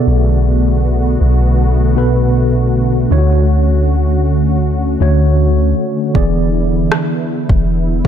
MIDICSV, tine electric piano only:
0, 0, Header, 1, 2, 480
1, 0, Start_track
1, 0, Tempo, 759494
1, 47, Time_signature, 4, 2, 24, 8
1, 5104, End_track
2, 0, Start_track
2, 0, Title_t, "Tine electric piano"
2, 0, Program_c, 0, 4
2, 0, Control_c, 0, 64, 127
2, 0, Note_on_c, 0, 47, 82
2, 0, Note_on_c, 0, 59, 77
2, 0, Note_on_c, 0, 69, 75
2, 0, Note_on_c, 0, 74, 94
2, 615, Note_off_c, 0, 47, 0
2, 617, Note_off_c, 0, 59, 0
2, 618, Note_off_c, 0, 69, 0
2, 621, Note_off_c, 0, 74, 0
2, 1242, Note_on_c, 0, 47, 81
2, 1245, Note_on_c, 0, 59, 76
2, 1249, Note_on_c, 0, 69, 73
2, 1252, Note_on_c, 0, 71, 91
2, 1856, Note_off_c, 0, 47, 0
2, 1858, Note_off_c, 0, 59, 0
2, 1860, Note_off_c, 0, 69, 0
2, 1862, Note_off_c, 0, 71, 0
2, 1962, Note_on_c, 0, 50, 78
2, 1966, Note_on_c, 0, 57, 72
2, 1970, Note_on_c, 0, 64, 58
2, 1973, Note_on_c, 0, 73, 86
2, 1974, Control_c, 0, 64, 0
2, 2011, Note_on_c, 0, 66, 76
2, 2013, Note_off_c, 0, 64, 0
2, 2098, Control_c, 0, 64, 127
2, 2775, Note_off_c, 0, 50, 0
2, 2777, Note_off_c, 0, 57, 0
2, 2780, Note_off_c, 0, 73, 0
2, 2799, Note_off_c, 0, 66, 0
2, 3162, Note_on_c, 0, 50, 78
2, 3166, Note_on_c, 0, 57, 77
2, 3170, Note_on_c, 0, 66, 75
2, 3173, Note_on_c, 0, 73, 89
2, 3777, Note_off_c, 0, 50, 0
2, 3778, Note_off_c, 0, 57, 0
2, 3780, Note_off_c, 0, 66, 0
2, 3782, Note_off_c, 0, 73, 0
2, 3882, Note_on_c, 0, 52, 81
2, 3885, Note_on_c, 0, 59, 78
2, 3888, Note_on_c, 0, 68, 74
2, 3892, Note_on_c, 0, 74, 86
2, 3895, Control_c, 0, 64, 0
2, 3992, Control_c, 0, 64, 127
2, 4694, Note_off_c, 0, 52, 0
2, 4696, Note_off_c, 0, 59, 0
2, 4698, Note_off_c, 0, 68, 0
2, 4700, Note_off_c, 0, 74, 0
2, 5083, Note_on_c, 0, 52, 81
2, 5104, Note_off_c, 0, 52, 0
2, 5104, End_track
0, 0, End_of_file